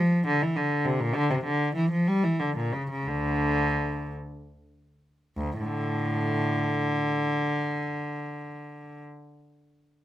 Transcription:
0.00 F3
0.27 D3
0.43 E3
0.56 D3
0.85 C3
1.00 A#2
1.14 D3
1.30 C3
1.44 D3
1.75 E3
1.91 F3
2.07 G3
2.24 E3
2.40 D3
2.57 A#2
2.73 C#3
2.90 C#3
3.07 D2 D3
5.37 D2
5.58 A2 D3

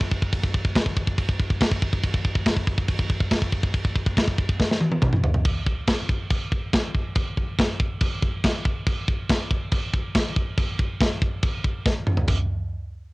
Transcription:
0.01 kick
0.12 kick
0.22 kick
0.33 kick, crash
0.43 kick
0.54 kick
0.65 kick
0.75 kick, snare, crash
0.86 kick
0.97 kick
1.07 kick
1.18 kick, crash
1.29 kick
1.40 kick
1.50 kick
1.61 kick, snare, crash
1.72 kick
1.82 kick
1.93 kick
2.04 kick, crash
2.14 kick
2.25 kick
2.35 kick
2.46 kick, snare, crash
2.57 kick
2.67 kick
2.78 kick
2.88 kick, crash
2.99 kick
3.10 kick
3.20 kick
3.31 kick, snare, crash
3.42 kick
3.52 kick
3.63 kick
3.74 kick, crash
3.85 kick
3.96 kick
4.06 kick
4.17 kick, snare, crash
4.28 kick
4.38 kick
4.49 kick
4.60 kick, snare
4.71 snare
4.81 high tom
4.92 high tom
5.02 kick, mid tom
5.13 mid tom
5.24 floor tom
5.34 floor tom
5.45 kick, china
5.67 kick
5.87 kick, snare, china
6.09 kick
6.30 kick, china
6.52 kick
6.73 kick, snare, china
6.95 kick
7.15 kick, china
7.37 kick
7.59 kick, snare, china
7.80 kick
8.01 kick, china
8.22 kick
8.44 kick, snare, china
8.65 kick
8.87 kick, china
9.08 kick
9.29 kick, snare, china
9.51 kick
9.71 kick, china
9.94 kick
10.15 kick, snare, china
10.36 kick
10.58 kick, china
10.79 kick
11.00 kick, snare, china
11.22 kick
11.43 kick, china
11.64 kick
11.86 kick, snare
12.07 mid tom
12.17 floor tom
12.28 kick, floor tom, china

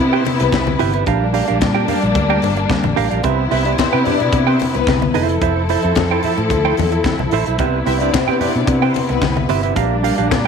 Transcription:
Already playing: C3 B3 E4
0.00 C3
0.13 C4 E4 G4 B4 C5 G5
0.25 muted clean electric guitar stroke, open hi-hat, muted conga
0.40 C2 B3 B4, muted clean electric guitar stroke, closed hi-hat
0.52 C2, muted clean electric guitar stroke, kick, snare, closed hi-hat, high conga
0.67 muted clean electric guitar stroke, high conga
0.79 G1 E4 G4 B4 E5, open hi-hat
0.94 E4 G4 B4 E5, closed hi-hat
1.06 A#1 G3 A#3 D4 G4 A#4 F5, kick, closed hi-hat, muted conga
1.33 D4 G4 A#4 F5, open hi-hat
1.48 A#1 D4 G4 A#4 F5, closed hi-hat
1.61 A#2, muted clean electric guitar stroke, kick, snare, closed hi-hat, high conga
1.74 D4 G4 A#4 G5
1.88 D4 G4 A#4 F5, open hi-hat, low conga
2.02 A#1, muted clean electric guitar stroke, closed hi-hat
2.15 D2, muted clean electric guitar stroke, kick, closed hi-hat, muted conga, low conga
2.30 D4 G4 A#4 G5
2.42 G1, muted clean electric guitar stroke, open hi-hat, muted conga
2.57 muted clean electric guitar stroke, closed hi-hat
2.70 muted clean electric guitar stroke, kick, snare, closed hi-hat, high conga
2.84 A1, muted clean electric guitar stroke, high conga
2.96 A1 D4 G4 A#4 F5, open hi-hat
3.11 A#1 D4 G4 A#4 F5, closed hi-hat
3.23 C2 C3 B3 C4 E4 G4 B4 E5, kick, closed hi-hat, muted conga
3.51 C2 C4 E4 G4 B4 E5, open hi-hat
3.65 C4 D4 G4 B4 D5 E5, closed hi-hat
3.78 C4 C5, kick, snare, closed hi-hat, high conga
3.92 C3 B3 C4 G4 B4 G5
4.05 C4 D4 G4 B4 D5 E5, open hi-hat, low conga
4.20 B2, muted clean electric guitar stroke, closed hi-hat
4.33 C3, muted clean electric guitar stroke, kick, closed hi-hat, muted conga
4.47 C4 G4 B4 C5 G5
4.59 muted clean electric guitar stroke, open hi-hat, muted conga
4.75 C2 B3 B4, muted clean electric guitar stroke, closed hi-hat
4.87 C2, muted clean electric guitar stroke, kick, snare, closed hi-hat, high conga
5.02 muted clean electric guitar stroke, high conga
5.14 F1 F3 E4 A4 C5 E5, open hi-hat
5.29 muted clean electric guitar stroke, closed hi-hat
5.41 F1 E4 A4 C5 E5, kick, closed hi-hat
5.69 E4 A4 C5 E5, open hi-hat
5.82 F2 E4 A4 C5 E5, closed hi-hat
5.95 F2, kick, snare, closed hi-hat, high conga
6.11 E4 A4 C5 G5
6.23 E4 A4 C5 E5, open hi-hat, low conga
6.38 A2, muted clean electric guitar stroke, closed hi-hat
6.50 D2, muted clean electric guitar stroke, kick, closed hi-hat, muted conga, low conga
6.65 E4 A4 C5 G5
6.77 E2, muted clean electric guitar stroke, open hi-hat, muted conga, low conga
6.92 muted clean electric guitar stroke, closed hi-hat
7.04 muted clean electric guitar stroke, kick, snare, closed hi-hat, high conga
7.19 C2, muted clean electric guitar stroke, high conga
7.31 A1 E4 A4 C5 E5, open hi-hat
7.46 B1 E4 A4 C5 E5, closed hi-hat
7.59 C2 C3 B3 C4 G4 B4 E5, kick, closed hi-hat, muted conga
7.86 C2 C4 E4 G4 B4 E5, open hi-hat
8.00 C4 D4 G4 B4 D5 E5, closed hi-hat
8.14 C4 C5, kick, snare, closed hi-hat, high conga
8.28 C3 B3 C4 G4 B4 G5
8.40 C4 D4 G4 B4 D5 E5, open hi-hat, low conga
8.55 B2, muted clean electric guitar stroke, closed hi-hat
8.67 C3, muted clean electric guitar stroke, kick, closed hi-hat, muted conga
8.82 C4 G4 B4 C5 G5
8.94 muted clean electric guitar stroke, open hi-hat, muted conga
9.09 C2 B3 B4, muted clean electric guitar stroke, closed hi-hat
9.21 C2, muted clean electric guitar stroke, kick, snare, closed hi-hat, high conga
9.37 muted clean electric guitar stroke, high conga
9.49 G1 C4 G4 B4 E5, open hi-hat
9.63 C4 G4 B4 E5, closed hi-hat
9.76 A#1 G3 A#3 D4 G4 A#4 F5, kick, closed hi-hat, muted conga
10.03 D4 G4 A#4 F5, open hi-hat
10.18 A#1 D4 G4 A#4 F5, closed hi-hat
10.31 A#2, kick, snare, closed hi-hat, high conga

